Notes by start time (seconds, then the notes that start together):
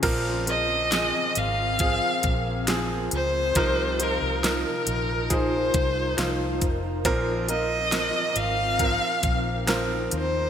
0.03 A#1 A#2 F3 C4 F4 A#4, kick, closed hi-hat, crash
0.46 F3 C4 A#4 D#5, closed hi-hat
0.92 F3 C4 G#4, snare, closed hi-hat
1.35 G#1 F5, closed hi-hat
1.79 F3 C4 G#4, kick, closed hi-hat
2.23 A#1, kick, closed hi-hat
2.67 F3 C4 G#4, snare, closed hi-hat
3.11 C#2 C5, closed hi-hat
3.55 C2 C3 F3 D#4 A#4, kick, closed hi-hat
4.00 F3 D#4 A#4 C5, closed hi-hat
4.22 C2
4.43 F3 D#4 A#4, snare, closed hi-hat
4.87 A#1, closed hi-hat
5.30 F3 D#4 G#4 C5, kick, closed hi-hat
5.74 C2, kick, closed hi-hat
6.17 C2 F3 D#4 F4, snare, closed hi-hat
6.61 F1, kick, closed hi-hat
7.05 A#1 A#2 F3 C4 A#4, kick, closed hi-hat
7.48 F3 C4 A#4 D#5, closed hi-hat
7.91 F3 C4 A#4, snare, closed hi-hat
8.36 G#1 F5, closed hi-hat
8.79 F3 C4 D#4 A#4, kick, closed hi-hat
9.23 A#1, kick, closed hi-hat
9.67 F3 C4 A#4, snare, closed hi-hat
10.11 D#2 C5, closed hi-hat